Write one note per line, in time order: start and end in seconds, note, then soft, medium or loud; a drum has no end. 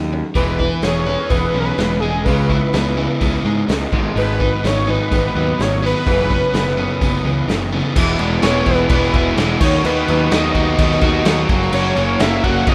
0.00 0.21 D#2 medium
0.00 0.10 C#4 medium
0.13 0.34 F#3 medium
0.13 0.34 C#4 medium
0.35 0.68 E1 medium
0.35 0.58 E2 medium
0.35 1.55 E3 medium
0.35 0.59 E3 medium
0.35 0.59 G#3 medium
0.35 0.85 B4 medium
0.35 kick loud
0.35 open hi-hat soft
0.59 0.81 E2 medium
0.59 0.82 E3 medium
0.59 1.06 B4 medium
0.59 kick medium
0.82 1.16 E1 medium
0.82 1.05 E2 medium
0.82 1.05 E3 medium
0.82 1.30 G#4 medium
0.82 1.31 C#5 loud
0.82 snare medium
0.82 open hi-hat soft
1.06 1.29 E2 medium
1.06 1.29 E3 medium
1.06 2.29 B4 medium
1.30 1.47 E1 medium
1.30 1.53 E2 medium
1.30 1.53 E3 medium
1.30 2.02 G#4 medium
1.30 1.59 B4 medium
1.30 kick loud
1.30 open hi-hat soft
1.54 1.71 B1 medium
1.54 1.77 E2 medium
1.54 1.77 E3 medium
1.54 2.26 C#4 medium
1.60 1.67 A#4 medium
1.65 2.02 B4 medium
1.78 2.27 E1 medium
1.78 2.00 E2 medium
1.78 2.00 E3 medium
1.78 3.44 G#3 medium
1.78 snare medium
1.78 open hi-hat soft
2.00 2.24 E2 medium
2.00 2.25 E3 medium
2.00 2.26 G#4 medium
2.00 2.49 G#4 medium
2.24 2.59 C#2 medium
2.24 3.45 C#3 medium
2.24 2.49 C#3 medium
2.24 2.49 G#3 medium
2.24 2.50 C#4 medium
2.24 3.21 B4 medium
2.24 kick medium
2.24 open hi-hat soft
2.50 2.72 C#3 medium
2.50 2.72 G#3 medium
2.50 2.96 E4 medium
2.50 kick medium
2.73 3.07 C#2 medium
2.73 2.96 C#3 medium
2.73 2.96 G#3 medium
2.73 3.20 B3 medium
2.73 snare loud
2.73 open hi-hat soft
2.97 3.19 C#3 medium
2.97 3.19 G#3 medium
2.97 3.92 E4 medium
3.21 3.38 C#2 medium
3.21 3.43 C#3 medium
3.21 3.43 G#3 medium
3.21 4.63 B3 medium
3.21 kick loud
3.21 open hi-hat soft
3.44 3.62 G#2 medium
3.44 3.67 C#3 medium
3.44 3.92 G#3 medium
3.44 3.67 G#3 medium
3.68 3.85 C#2 medium
3.68 3.92 C#3 medium
3.68 3.91 C#3 medium
3.68 3.91 G#3 medium
3.68 snare loud
3.68 open hi-hat soft
3.92 4.09 G#1 medium
3.92 4.14 G#2 medium
3.92 4.15 G#2 medium
3.92 4.15 D#3 medium
3.92 4.16 G#3 loud
3.92 kick loud
4.16 4.49 G#1 medium
4.16 5.35 G#2 medium
4.16 4.39 G#2 medium
4.16 4.39 D#3 medium
4.16 4.39 G#3 medium
4.16 4.68 B4 loud
4.16 open hi-hat soft
4.40 4.62 G#2 medium
4.40 4.62 D#3 medium
4.40 4.86 D#4 medium
4.40 kick medium
4.64 4.97 G#1 medium
4.64 4.86 G#2 medium
4.64 4.86 D#3 medium
4.64 5.11 B3 medium
4.64 4.91 C#5 medium
4.64 snare medium
4.64 open hi-hat soft
4.87 5.09 G#2 medium
4.87 5.09 D#3 medium
4.87 6.06 D#4 medium
4.87 5.63 B4 loud
5.11 5.28 G#1 medium
5.11 5.33 G#2 medium
5.11 5.33 D#3 medium
5.11 5.82 B3 medium
5.11 kick loud
5.11 open hi-hat soft
5.35 5.52 D#2 medium
5.35 5.57 G#2 medium
5.35 5.56 D#3 medium
5.35 6.07 F#3 medium
5.58 5.92 G#1 medium
5.58 5.80 G#2 medium
5.58 6.07 D#3 medium
5.58 5.80 D#3 medium
5.58 5.84 C#5 loud
5.58 snare medium
5.58 open hi-hat soft
5.82 6.04 G#2 medium
5.82 6.04 D#3 medium
5.82 6.33 B3 medium
5.82 7.46 B4 loud
6.07 6.39 F#1 medium
6.07 7.25 F#2 medium
6.07 6.29 F#2 medium
6.07 6.29 C#3 medium
6.07 6.30 E3 medium
6.07 kick loud
6.07 open hi-hat soft
6.30 6.52 F#2 medium
6.30 6.52 C#3 medium
6.30 6.76 C#4 medium
6.30 kick medium
6.53 6.87 F#1 medium
6.53 6.75 F#2 medium
6.53 6.76 C#3 medium
6.53 7.00 B3 medium
6.53 snare medium
6.53 open hi-hat soft
6.67 snare soft
6.77 6.99 F#2 medium
6.77 6.99 C#3 medium
6.77 7.96 C#4 medium
7.01 7.18 F#1 medium
7.01 7.23 F#2 medium
7.01 7.23 C#3 medium
7.01 7.71 B3 medium
7.01 kick loud
7.01 open hi-hat medium
7.25 7.41 C#2 medium
7.25 7.46 F#2 medium
7.25 7.46 C#3 medium
7.25 7.94 E3 medium
7.48 7.81 F#1 medium
7.48 7.70 F#2 medium
7.48 7.95 C#3 medium
7.48 7.70 C#3 medium
7.48 snare medium
7.48 open hi-hat soft
7.72 7.94 F#2 medium
7.72 7.94 C#3 medium
7.72 7.96 B3 medium
7.96 8.15 E1 loud
7.96 8.44 E2 medium
7.96 8.44 B2 medium
7.96 9.14 E3 medium
7.96 8.21 E3 medium
7.96 8.20 G#3 medium
7.96 8.20 B3 medium
7.96 8.19 E4 medium
7.96 kick loud
7.96 crash loud
7.96 crash medium
8.19 8.38 E1 medium
8.19 8.42 E3 medium
8.19 9.36 G#3 medium
8.19 8.43 G#3 medium
8.19 8.45 B3 medium
8.19 8.44 E4 medium
8.19 crash medium
8.42 8.61 E1 medium
8.42 8.90 E3 medium
8.42 8.90 G#3 medium
8.42 8.87 B3 medium
8.42 8.91 B3 medium
8.42 8.91 E4 medium
8.42 8.65 C#5 loud
8.42 snare loud
8.42 crash medium
8.66 8.85 E1 medium
8.66 9.12 E4 medium
8.66 8.89 B4 loud
8.66 kick medium
8.66 crash medium
8.89 9.09 E1 medium
8.89 9.37 E2 medium
8.89 9.38 B2 medium
8.89 9.15 E3 loud
8.89 9.14 G#3 medium
8.89 9.60 B3 medium
8.89 9.13 B3 loud
8.89 9.34 B4 medium
8.89 kick loud
8.89 crash medium
8.93 9.12 E4 medium
9.03 snare soft
9.13 9.33 E1 loud
9.13 9.36 E3 medium
9.13 9.38 G#3 medium
9.13 9.38 B3 medium
9.13 9.61 E4 medium
9.13 9.39 E4 medium
9.13 kick medium
9.13 crash medium
9.37 9.56 E1 medium
9.37 9.60 E3 medium
9.37 9.61 G#3 medium
9.37 9.60 G#3 medium
9.37 9.61 B3 medium
9.37 9.61 E4 medium
9.37 snare medium
9.37 crash medium
9.60 9.80 D#2 medium
9.60 9.83 D#3 medium
9.60 9.84 B3 medium
9.60 9.85 D#4 medium
9.60 9.86 F#4 medium
9.60 9.83 C#5 loud
9.60 kick loud
9.60 crash loud
9.74 snare soft
9.84 10.03 D#2 medium
9.84 10.29 D#3 medium
9.84 11.02 D#3 medium
9.84 10.09 B3 medium
9.84 10.08 D#4 medium
9.84 10.07 F#4 medium
9.84 10.33 B4 loud
9.84 crash medium
10.08 10.27 D#2 medium
10.08 11.24 F#3 medium
10.08 10.30 B3 medium
10.08 10.31 D#4 medium
10.08 10.33 F#4 medium
10.08 crash medium
10.30 10.50 D#2 medium
10.30 10.77 D#3 medium
10.30 10.77 B3 medium
10.30 10.78 B3 medium
10.30 10.79 D#4 medium
10.30 10.80 F#4 medium
10.30 11.26 D#5 loud
10.30 snare loud
10.30 crash medium
10.55 10.74 D#2 medium
10.55 11.02 F#4 medium
10.55 kick medium
10.55 crash medium
10.78 10.97 D#2 medium
10.78 11.24 D#3 loud
10.78 11.50 B3 medium
10.78 11.03 B3 medium
10.78 11.02 D#4 loud
10.78 11.01 F#4 loud
10.78 kick loud
10.78 crash medium
10.91 snare soft
11.01 11.21 D#2 loud
11.01 11.25 B3 medium
11.01 11.26 D#4 medium
11.01 11.27 F#4 medium
11.01 12.43 F#4 medium
11.01 kick medium
11.01 crash medium
11.25 11.44 D#2 medium
11.25 11.48 D#3 medium
11.25 11.49 F#3 medium
11.25 11.48 B3 medium
11.25 11.49 D#4 medium
11.25 11.49 F#4 medium
11.25 snare loud
11.25 crash medium
11.49 11.68 F#1 medium
11.49 11.72 F#2 medium
11.49 11.72 C#3 medium
11.49 11.72 F#3 medium
11.49 11.73 F#3 medium
11.49 11.74 A#3 medium
11.49 11.74 C#4 medium
11.49 11.76 F#4 medium
11.49 kick loud
11.49 crash medium
11.62 snare soft
11.72 11.92 F#1 medium
11.72 12.67 F#2 medium
11.72 12.21 C#3 medium
11.72 12.75 F#3 medium
11.72 11.99 F#3 loud
11.72 11.97 A#3 medium
11.72 11.97 C#4 medium
11.72 11.96 F#4 loud
11.72 12.22 C#5 loud
11.72 crash medium
11.96 12.15 F#1 medium
11.96 12.20 F#3 medium
11.96 12.75 A#3 medium
11.96 12.20 A#3 medium
11.96 12.21 C#4 medium
11.96 12.22 F#4 medium
11.96 crash medium
12.20 12.39 F#1 medium
12.20 12.67 F#3 medium
12.20 12.68 A#3 medium
12.20 12.66 C#4 medium
12.20 12.69 C#4 medium
12.20 12.69 F#4 medium
12.20 12.45 E5 loud
12.20 snare loud
12.20 crash medium
12.43 12.62 F#1 medium
12.43 12.75 F#4 medium
12.43 12.69 F#5 loud
12.43 kick medium
12.43 crash medium
12.67 12.75 F#1 medium
12.67 12.75 F#2 medium
12.67 12.75 C#3 medium
12.67 12.75 F#3 medium
12.67 12.75 A#3 loud
12.67 12.75 C#4 medium
12.67 12.75 C#4 loud
12.67 12.75 F#4 loud
12.67 12.75 D#5 loud
12.67 kick loud
12.67 crash medium